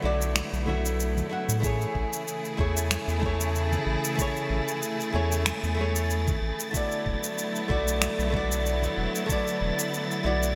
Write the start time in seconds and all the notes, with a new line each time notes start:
Already playing: D3 F#3 A3 B3 E4
0.02 B1 A3 E4 F#4 D5
0.22 shaker
0.35 finger snap, high conga, shaker
0.53 B1, shaker
0.66 A3 E4 F#4 E5, high conga, low conga
0.85 shaker
1.00 shaker
1.17 low conga, shaker
1.29 A3 E4 F#4 F#5
1.49 A2, shaker
1.60 C#3 E3 A3 E4 G#4 A6, kick, shaker
1.66 C#5
1.81 shaker
1.95 A1, kick
2.13 shaker
2.28 shaker
2.45 shaker
2.57 E2 A3 E4 G#4 C#5, kick
2.77 shaker
2.91 finger snap, high conga, shaker
3.08 E2, shaker
3.20 A3 E4, kick, high conga
3.24 G#4 C#5
3.41 shaker
3.55 shaker
3.72 low conga, shaker
3.86 A1
4.04 shaker
4.15 A3 E4, kick, shaker
4.19 G#4 C#5
4.36 shaker
4.50 A1
4.68 shaker
4.83 shaker
5.00 shaker
5.12 E2 A3 E4 G#4 C#5
5.32 shaker
5.46 finger snap, high conga, shaker
5.63 E2, shaker
5.75 A3 E4
5.79 G#4 C#5, high conga
5.96 shaker
6.10 shaker
6.28 kick, low conga, shaker
6.42 A1
6.60 shaker
6.71 D3 F#3 A3 B3 E4 F#4, kick, shaker
6.77 D5
6.92 shaker
7.06 E1, kick
7.23 shaker
7.38 shaker
7.56 shaker
7.68 B1 A3 E4 F#4 D5, kick
7.88 shaker
8.02 finger snap, high conga, shaker
8.19 B1, shaker
8.30 A3 E4, kick, high conga
8.34 F#4 D5
8.52 shaker
8.66 shaker
8.82 low conga, shaker
8.97 E1
9.15 shaker
9.26 A3 E4, kick, shaker
9.30 F#4 D5
9.47 shaker
9.61 E1
9.79 shaker
9.94 shaker
10.11 shaker
10.23 B1 A3 E4 F#4 D5
10.43 shaker